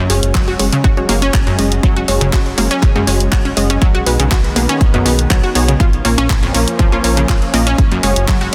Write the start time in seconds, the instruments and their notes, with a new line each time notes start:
Already playing: supersaw synth F#3 G#3 C#4
0.10 analog synth bass F#1, synth pluck G#3 C#4 F#4 G#4 C#5, open hi-hat
0.23 analog synth bass F#1, closed hi-hat
0.35 analog synth bass F#1, synth arpeggio sound F#3, kick, clap, closed hi-hat
0.48 synth arpeggio sound F#4, closed hi-hat
0.59 analog synth bass F#1, synth pluck G#3 C#4 F#4 G#4 C#5, open hi-hat
0.72 synth arpeggio sound C#3, closed hi-hat
0.84 analog synth bass F#1, synth arpeggio sound F#4, kick, closed hi-hat
0.97 synth pluck G#3 C#4 F#4 G#4 C#5, closed hi-hat
1.09 analog synth bass F#1, synth pluck G#3 C#4 F#4 G#4 C#5, synth arpeggio sound A#3, open hi-hat
1.22 synth arpeggio sound C#4, closed hi-hat
1.34 analog synth bass F#1, kick, clap, closed hi-hat
1.47 synth arpeggio sound F#2, closed hi-hat
1.59 analog synth bass F#1, synth pluck G#3 C#4 F#4 G#4 D#5, open hi-hat
1.72 closed hi-hat
1.83 analog synth bass F#1, synth arpeggio sound F#3, kick, closed hi-hat
1.96 synth arpeggio sound F#4, closed hi-hat
2.08 analog synth bass F#1, synth pluck G#3 C#4 F#4 G#4 C#5, open hi-hat
2.21 analog synth bass F#1, synth arpeggio sound C#3, closed hi-hat
2.33 analog synth bass F#1, synth arpeggio sound F#4, kick, clap, closed hi-hat
2.46 closed hi-hat
2.58 analog synth bass F#1, synth pluck G#3 C#4 F#4 G#4 C#5, synth arpeggio sound A#3, open hi-hat
2.71 synth arpeggio sound C#4, closed hi-hat
2.82 analog synth bass F#1, kick, clap, closed hi-hat
2.96 synth arpeggio sound F#2, synth pluck G#3 C#4 F#4 G#4 C#5, closed hi-hat
3.07 analog synth bass F#1, synth pluck G#3 C#4 F#4 G#4 C#5, open hi-hat
3.20 closed hi-hat
3.32 analog synth bass F#1, synth arpeggio sound F#4, kick, clap, closed hi-hat
3.45 synth arpeggio sound C#4, closed hi-hat
3.57 analog synth bass F#1, synth pluck G#3 C#4 F#4 G#4 D#5, open hi-hat
3.70 synth arpeggio sound C#4, closed hi-hat
3.81 analog synth bass B1, supersaw synth D#3 B3, synth arpeggio sound F#3, kick, closed hi-hat
3.95 synth arpeggio sound F#4, closed hi-hat
4.06 analog synth bass B1, synth pluck B3 D#4 F#4 G#4 B4, open hi-hat
4.19 analog synth bass B1, synth arpeggio sound C#3, closed hi-hat
4.31 analog synth bass B1, synth arpeggio sound F#4, kick, clap, closed hi-hat
4.44 closed hi-hat
4.56 analog synth bass B1, synth arpeggio sound A#3, synth pluck B3 D#4 F#4 G#4 B4, open hi-hat
4.69 synth arpeggio sound C#4, closed hi-hat
4.81 analog synth bass B1, kick, closed hi-hat
4.94 synth arpeggio sound F#2, synth pluck B3 D#4 F#4 G#4 B4, closed hi-hat
5.05 analog synth bass B1, synth pluck B3 D#4 F#4 G#4 B4, open hi-hat
5.19 closed hi-hat
5.30 analog synth bass B1, synth arpeggio sound F#3, kick, clap, closed hi-hat
5.43 synth arpeggio sound F#4, closed hi-hat
5.55 analog synth bass B1, synth pluck B3 D#4 F#4 G#4 C#5, open hi-hat
5.68 synth arpeggio sound C#3, closed hi-hat
5.80 analog synth bass A#1, supersaw synth F3 A#3 C#4, synth arpeggio sound F4, kick, closed hi-hat
5.93 closed hi-hat
6.05 analog synth bass A#1, synth pluck A#3 C#4 F4 A#4 C#5, synth arpeggio sound A#3, open hi-hat
6.18 analog synth bass A#1, synth arpeggio sound C#4, closed hi-hat
6.30 analog synth bass A#1, kick, clap, closed hi-hat
6.43 synth arpeggio sound F2, closed hi-hat
6.54 analog synth bass A#1, synth pluck A#3 C#4 F4 A#4 C#5, open hi-hat
6.68 closed hi-hat
6.79 analog synth bass A#1, synth arpeggio sound F3, kick, closed hi-hat
6.92 synth pluck A#3 C#4 F4 A#4 C#5, synth arpeggio sound F4, closed hi-hat
7.04 analog synth bass A#1, synth pluck A#3 C#4 F4 A#4 C#5, open hi-hat
7.17 synth arpeggio sound C#3, closed hi-hat
7.29 analog synth bass A#1, synth arpeggio sound F4, kick, clap, closed hi-hat
7.42 closed hi-hat
7.54 analog synth bass A#1, synth pluck A#3 C#4 F4 A#4 D#5, synth arpeggio sound A#3, open hi-hat
7.67 synth arpeggio sound C#4, closed hi-hat
7.78 analog synth bass F#1, supersaw synth F#3 G#3, kick, closed hi-hat
7.91 synth arpeggio sound F#2, closed hi-hat
8.03 analog synth bass F#1, synth pluck G#3 C#4 F#4 G#4 C#5, open hi-hat
8.16 analog synth bass F#1, closed hi-hat
8.28 analog synth bass F#1, synth arpeggio sound F#3, kick, clap, closed hi-hat
8.41 synth arpeggio sound F#4, closed hi-hat